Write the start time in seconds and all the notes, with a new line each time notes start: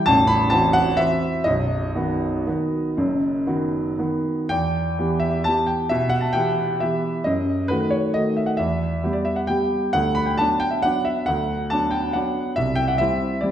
0.06 A0 A1 A5
0.27 B5
0.50 E3 C4 F#4 A5
0.73 F#5
0.97 E3 C4 F#4 E5
1.44 B0 B1 D#5
1.95 D#3 B3 F#4
2.47 D#3 B3 F#4
2.97 F#1 F#2
3.47 D#3 B3 F#4
3.99 D#3 B3 F#4
4.49 E2 G5
4.98 E3 B3 G4
5.20 E5
5.44 E3 B3 G4 A5
5.67 G5
5.89 B2 E5
6.09 F#5
6.21 A5
6.33 E3 B3 G4 G5
6.80 E3 B3 G4 E5
7.24 F#2 D#5
7.68 D#3 A3 F#4 B4
7.90 C#5
8.14 D#3 A3 F#4 D#5
8.37 E5
8.46 F#5
8.57 E2 E5
9.04 G3 B3 G4
9.13 D5
9.25 E5
9.36 F#5
9.47 G3 B3 G4 G5
9.93 D2 F#5
10.15 B5
10.26 G5
10.38 F#3 B3 D4 A5
10.60 G5
10.71 E5
10.82 F#3 B3 D4 F#5
11.05 E5
11.26 D2 F#5
11.70 F#3 B3 D4 A5
11.91 G5
12.13 F#3 B3 D4 F#5
12.56 C2 E5
12.75 G5
12.88 F#5
12.98 G3 C4 E4 E5
13.41 G3 C4 E4 D5